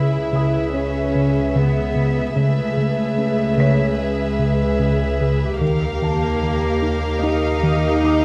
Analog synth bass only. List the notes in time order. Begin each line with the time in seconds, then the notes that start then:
Already playing: C#3
0.33 C#3
0.74 C#4
1.15 C#3
1.55 C#3
1.95 C#3
2.36 C#3
2.77 C#3
3.18 C#3
3.58 C#3
3.98 C#4
4.39 C#3
4.79 C#3
5.21 C#3
5.61 D#3
6.02 D#3
6.42 D#3
6.82 D#3
7.23 D#4
7.63 D#3
8.03 D#3